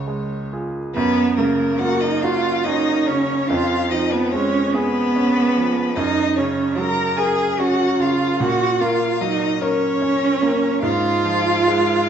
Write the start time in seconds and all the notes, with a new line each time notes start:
Already playing: C#2 C#3 C#5
0.08 G#3
0.53 F4 G#4
0.94 F#2 B3 B4
1.36 C#3 A#3 A#4
1.79 A#3 F#4 F#5
2.00 D#4 D#5
2.21 F4 F#4 F5
2.64 C#4 D#4 D#5
3.07 C#3 C#4 C#5
3.48 F2 F4 F5
3.90 F3 D#4 D#5
4.11 B3 B4
4.31 G#3 C#4 C#5
4.73 B3 G#4 B4
5.16 C#4
5.56 F3
5.95 F#2 D#4 D#5
6.36 C#3 C#4 C#5
6.77 F#3 A#4 A#5
7.17 G#4 A#4 G#5
7.59 C#4 F#4 F#5
8.00 C#3 F4 F5
8.40 A#2 F#4 F#5
8.80 A#3 F4 F5
9.21 F#3 D#4 D#5
9.60 C#4 A#4 C#5
10.02 C#4
10.42 A#3
10.81 G#2 F4 F5
11.24 F3
11.68 G#3